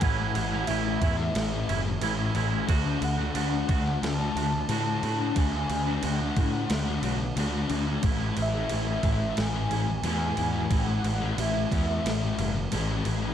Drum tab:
CC |x-x-x-x-x-x-x-x-|x-x-x-x-x-x-x-x-|x-x-x-x-x-x-x-x-|x-x-x-x-x-x-x-x-|
SD |-------oo-------|-------oo-------|--------o-------|--------o-------|
BD |o-----o---------|o-----o---------|o-----o---------|o-----o---------|

CC |x-x-x-x-x-x-x-x-|
SD |--------o-------|
BD |o-----o---------|